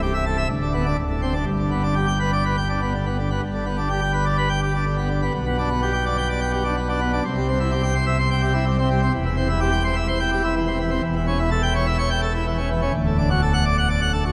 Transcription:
0.00 0.47 C1 loud
0.00 0.47 C2 medium
0.00 0.13 G4 medium
0.14 0.24 E5 loud
0.26 0.36 A4 medium
0.38 0.48 E5 medium
0.50 0.96 D1 loud
0.50 0.96 D2 loud
0.62 0.73 D3 medium
0.74 0.84 B3 medium
0.86 0.96 D4 loud
0.98 1.45 D1 medium
0.98 1.45 D2 medium
1.10 1.21 A2 medium
1.22 1.33 C4 medium
1.34 1.44 D4 medium
1.46 3.38 G1 medium
1.46 3.38 G2 medium
1.59 1.70 D3 medium
1.71 1.82 B3 medium
1.83 1.94 D4 medium
1.96 2.06 G4 medium
2.07 2.19 G5 medium
2.20 2.31 B4 medium
2.33 2.44 D5 medium
2.45 2.56 B4 medium
2.57 2.68 G5 medium
2.69 2.80 D4 medium
2.82 2.93 B3 medium
2.94 3.05 D3 medium
3.06 3.17 B3 medium
3.18 3.29 D3 medium
3.31 3.41 B3 medium
3.42 5.30 G1 medium
3.42 5.30 G2 medium
3.54 3.65 D3 medium
3.66 3.77 B3 medium
3.77 3.88 D4 medium
3.90 4.00 G4 medium
4.01 4.12 G5 loud
4.14 4.24 B4 medium
4.26 4.36 D5 medium
4.38 4.49 B4 medium
4.50 4.60 G5 medium
4.62 4.73 G4 medium
4.74 4.85 D4 medium
4.86 4.97 D3 medium
4.98 5.08 B3 medium
5.10 5.20 D3 medium
5.22 5.32 B3 medium
5.34 7.20 B1 medium
5.34 7.20 B2 medium
5.46 5.56 B3 medium
5.58 5.69 D4 medium
5.70 5.80 B3 medium
5.83 5.93 G4 medium
5.94 6.04 G5 loud
6.06 6.16 D5 medium
6.18 6.28 G5 medium
6.30 6.40 D5 medium
6.41 6.52 G5 medium
6.53 6.63 G4 medium
6.65 6.75 D4 medium
6.77 6.87 B3 medium
6.89 7.00 D4 medium
7.01 7.11 B3 medium
7.13 7.23 D4 medium
7.25 9.10 C2 medium
7.25 9.10 C3 medium
7.36 7.47 G3 medium
7.48 7.58 C4 medium
7.60 7.70 E4 medium
7.72 7.82 G4 medium
7.83 7.94 G5 loud
7.95 8.05 C5 medium
8.06 8.17 E5 medium
8.18 8.29 C5 medium
8.31 8.41 G5 medium
8.42 8.53 G4 medium
8.54 8.65 E4 medium
8.66 8.77 G3 medium
8.79 8.89 C4 medium
8.90 9.00 G3 medium
9.02 9.12 C4 medium
9.14 10.99 E1 medium
9.14 10.99 E2 medium
9.25 9.36 E3 medium
9.37 9.47 C4 medium
9.49 9.60 E4 medium
9.60 9.71 G4 medium
9.72 9.83 G5 loud
9.84 9.95 C5 medium
9.96 10.07 E5 medium
10.08 10.19 C5 loud
10.20 10.31 G5 medium
10.32 10.42 G4 medium
10.44 10.54 E4 medium
10.56 10.66 E3 medium
10.67 10.78 C4 medium
10.79 10.90 E3 medium
10.91 11.01 C4 medium
11.03 12.90 E1 loud
11.03 12.90 E2 loud
11.15 11.26 E3 medium
11.27 11.38 C#4 medium
11.39 11.50 E4 medium
11.51 11.61 A4 medium
11.63 11.73 G5 loud
11.75 11.85 C#5 loud
11.87 11.97 E5 medium
11.98 12.09 C#5 loud
12.10 12.21 G5 medium
12.22 12.33 A4 medium
12.34 12.45 E4 medium
12.46 12.57 E3 medium
12.58 12.69 C#4 medium
12.70 12.80 E3 medium
12.82 12.92 C#4 medium
12.94 14.32 D1 loud
12.94 14.32 D2 medium
13.06 13.17 A2 medium
13.18 13.29 D4 medium
13.31 13.41 F#4 medium
13.42 13.53 A4 medium
13.54 13.64 F#5 loud
13.65 13.76 D5 loud
13.78 13.88 F#5 medium
13.90 14.00 D5 medium
14.01 14.12 F#5 medium
14.13 14.24 A4 medium
14.25 14.32 F#4 medium

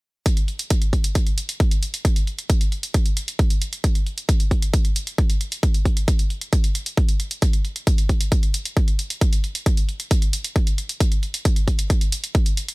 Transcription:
0.26 kick loud
0.26 closed hi-hat medium
0.37 closed hi-hat soft
0.48 closed hi-hat soft
0.59 closed hi-hat soft
0.70 kick loud
0.70 closed hi-hat medium
0.82 closed hi-hat soft
0.93 kick medium
0.93 closed hi-hat soft
1.04 closed hi-hat medium
1.15 kick loud
1.15 closed hi-hat medium
1.27 closed hi-hat soft
1.38 closed hi-hat medium
1.49 closed hi-hat medium
1.60 kick loud
1.60 closed hi-hat soft
1.71 closed hi-hat soft
1.83 closed hi-hat medium
1.94 closed hi-hat soft
2.05 kick loud
2.05 closed hi-hat medium
2.16 closed hi-hat soft
2.27 closed hi-hat soft
2.39 closed hi-hat soft
2.50 kick loud
2.50 closed hi-hat medium
2.61 closed hi-hat soft
2.72 closed hi-hat soft
2.83 closed hi-hat medium
2.94 kick loud
2.94 closed hi-hat medium
3.06 closed hi-hat soft
3.17 closed hi-hat medium
3.28 closed hi-hat soft
3.39 kick loud
3.39 closed hi-hat soft
3.50 closed hi-hat soft
3.62 closed hi-hat medium
3.73 closed hi-hat soft
3.84 kick loud
3.84 closed hi-hat medium
3.95 closed hi-hat soft
4.07 closed hi-hat soft
4.18 closed hi-hat soft
4.29 kick loud
4.29 closed hi-hat medium
4.40 closed hi-hat soft
4.51 kick medium
4.51 closed hi-hat soft
4.62 closed hi-hat soft
4.74 kick loud
4.74 closed hi-hat medium
4.85 closed hi-hat soft
4.96 closed hi-hat medium
5.07 closed hi-hat soft
5.18 kick loud
5.18 closed hi-hat soft
5.30 closed hi-hat soft
5.41 closed hi-hat medium
5.52 closed hi-hat soft
5.63 kick loud
5.63 closed hi-hat medium
5.74 closed hi-hat soft
5.85 kick medium
5.85 closed hi-hat soft
5.97 closed hi-hat soft
6.08 kick loud
6.08 closed hi-hat medium
6.19 closed hi-hat soft
6.30 closed hi-hat soft
6.41 closed hi-hat soft
6.53 kick loud
6.53 closed hi-hat medium
6.64 closed hi-hat soft
6.75 closed hi-hat medium
6.86 closed hi-hat soft
6.97 kick loud
6.97 closed hi-hat soft
7.09 closed hi-hat soft
7.20 closed hi-hat medium
7.31 closed hi-hat soft
7.42 kick loud
7.42 closed hi-hat medium
7.53 closed hi-hat soft
7.65 closed hi-hat soft
7.76 closed hi-hat soft
7.87 kick loud
7.87 closed hi-hat medium
7.98 closed hi-hat soft
8.09 kick medium
8.09 closed hi-hat soft
8.21 closed hi-hat soft
8.32 kick loud
8.32 closed hi-hat medium
8.43 closed hi-hat soft
8.54 closed hi-hat medium
8.65 closed hi-hat soft
8.77 kick loud
8.77 closed hi-hat soft
8.88 closed hi-hat soft
8.99 closed hi-hat medium
9.10 closed hi-hat soft
9.21 kick loud
9.21 closed hi-hat medium
9.33 closed hi-hat soft
9.44 closed hi-hat soft
9.55 closed hi-hat soft
9.66 kick loud
9.66 closed hi-hat medium
9.77 closed hi-hat soft
9.89 closed hi-hat soft
10.00 closed hi-hat soft
10.11 kick loud
10.11 closed hi-hat medium
10.22 closed hi-hat soft
10.33 closed hi-hat medium
10.44 closed hi-hat soft
10.56 kick loud
10.56 closed hi-hat soft
10.67 closed hi-hat soft
10.78 closed hi-hat medium
10.89 closed hi-hat soft
11.00 kick loud
11.00 closed hi-hat medium
11.12 closed hi-hat soft
11.23 closed hi-hat soft
11.34 closed hi-hat medium
11.45 kick loud
11.45 closed hi-hat medium
11.56 closed hi-hat soft
11.68 kick medium
11.68 closed hi-hat soft
11.79 closed hi-hat medium
11.90 kick loud
11.90 closed hi-hat medium
12.01 closed hi-hat soft
12.12 closed hi-hat medium
12.24 closed hi-hat medium
12.35 kick loud
12.35 closed hi-hat soft
12.46 closed hi-hat soft
12.57 closed hi-hat medium
12.68 closed hi-hat medium

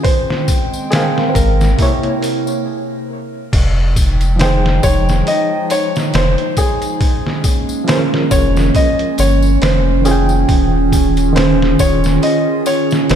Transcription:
0.03 1.77 G#3 medium
0.03 1.77 C4 medium
0.03 0.87 C5 medium
0.03 1.77 G5 medium
0.03 kick loud
0.03 open hi-hat medium
0.03 tambourine soft
0.30 snare soft
0.48 kick medium
0.48 open hi-hat medium
0.48 tambourine medium
0.73 tambourine medium
0.90 1.76 G#3 medium
0.90 1.26 G#4 medium
0.90 1.77 A#4 medium
0.90 1.78 C5 medium
0.90 1.77 G5 medium
0.90 snare loud
0.90 open hi-hat medium
0.90 tambourine soft
0.95 1.79 F5 medium
1.18 snare soft
1.28 1.35 C5 medium
1.34 1.75 G#1 medium
1.34 2.61 A#4 medium
1.34 kick medium
1.34 open hi-hat medium
1.34 tambourine medium
1.61 snare soft
1.61 tambourine soft
1.78 2.14 C3 medium
1.78 2.66 C3 medium
1.78 2.15 A#3 medium
1.78 2.66 A#3 medium
1.78 2.65 E4 medium
1.78 2.16 E4 medium
1.78 2.65 C#5 medium
1.78 kick loud
1.78 open hi-hat medium
1.78 tambourine soft
1.83 2.17 C#5 loud
2.03 closed hi-hat soft
2.23 open hi-hat medium
2.23 tambourine medium
2.47 tambourine soft
3.53 4.80 F1 loud
3.53 6.97 F3 medium
3.53 6.97 G#3 medium
3.53 6.98 D#4 medium
3.53 6.97 G5 medium
3.53 kick loud
3.53 open hi-hat medium
3.53 crash medium
3.53 tambourine soft
3.96 kick medium
3.96 open hi-hat medium
3.96 tambourine medium
4.21 closed hi-hat soft
4.21 tambourine soft
4.36 6.97 F3 medium
4.36 6.98 D#4 medium
4.36 open hi-hat medium
4.40 4.81 C5 loud
4.40 7.00 G5 medium
4.40 snare loud
4.40 tambourine soft
4.45 7.01 G#4 medium
4.66 snare medium
4.83 5.22 F1 medium
4.83 5.28 C#5 loud
4.83 kick medium
4.83 open hi-hat medium
4.83 tambourine medium
5.09 snare soft
5.09 tambourine soft
5.27 5.72 D#5 loud
5.27 open hi-hat medium
5.27 tambourine soft
5.70 6.16 C#5 loud
5.70 open hi-hat medium
5.70 tambourine medium
5.96 snare soft
5.96 tambourine soft
6.13 6.36 F1 loud
6.13 6.59 C5 loud
6.13 snare loud
6.13 open hi-hat medium
6.13 tambourine soft
6.38 closed hi-hat soft
6.57 7.92 G#4 loud
6.57 kick medium
6.57 open hi-hat medium
6.57 tambourine medium
6.82 closed hi-hat soft
6.82 tambourine medium
7.01 10.46 G#3 medium
7.01 10.46 A#3 medium
7.01 13.15 C#4 medium
7.01 kick loud
7.01 open hi-hat medium
7.01 tambourine soft
7.27 snare soft
7.44 kick medium
7.44 open hi-hat medium
7.44 tambourine medium
7.69 tambourine medium
7.84 9.99 F3 medium
7.84 10.00 F4 medium
7.84 7.98 C5 loud
7.84 open hi-hat medium
7.88 10.01 G#4 medium
7.88 10.03 A#4 medium
7.88 snare loud
7.88 tambourine soft
7.94 10.04 C#4 medium
8.14 snare soft
8.31 8.70 F1 medium
8.31 8.76 C#5 loud
8.31 kick medium
8.31 open hi-hat medium
8.31 tambourine loud
8.56 snare soft
8.56 tambourine medium
8.75 9.20 D#5 loud
8.75 kick loud
8.75 open hi-hat medium
8.75 tambourine soft
8.99 closed hi-hat soft
9.18 9.57 G1 medium
9.18 9.64 C#5 loud
9.18 open hi-hat medium
9.18 tambourine medium
9.42 tambourine medium
9.62 10.45 F1 loud
9.62 10.07 C5 loud
9.62 snare loud
9.62 open hi-hat medium
9.62 tambourine soft
10.01 11.29 D#3 medium
10.01 11.31 C#4 medium
10.01 11.40 G#4 loud
10.01 open hi-hat medium
10.01 tambourine medium
10.08 11.33 F4 medium
10.08 11.34 G5 loud
10.29 tambourine soft
10.49 11.76 D#1 loud
10.49 13.15 D#3 medium
10.49 13.15 F4 medium
10.49 13.15 G#4 medium
10.49 kick loud
10.49 open hi-hat medium
10.49 tambourine soft
10.92 kick medium
10.92 open hi-hat medium
10.92 tambourine loud
11.17 closed hi-hat soft
11.17 tambourine medium
11.33 13.15 D#3 medium
11.33 13.15 C#4 medium
11.33 11.81 C5 loud
11.33 open hi-hat medium
11.33 tambourine soft
11.37 13.15 F4 medium
11.37 snare loud
11.42 13.15 G#4 medium
11.62 snare medium
11.79 12.18 D#1 medium
11.79 12.20 C#5 loud
11.79 kick medium
11.79 open hi-hat medium
11.79 tambourine medium
12.04 snare soft
12.04 tambourine medium
12.23 12.68 D#5 loud
12.23 open hi-hat medium
12.23 tambourine soft
12.66 13.11 C#5 loud
12.66 open hi-hat medium
12.66 tambourine medium
12.91 snare soft
12.91 tambourine medium
13.09 13.15 D#1 medium
13.09 13.15 C5 loud
13.09 snare loud
13.09 open hi-hat medium
13.09 tambourine soft

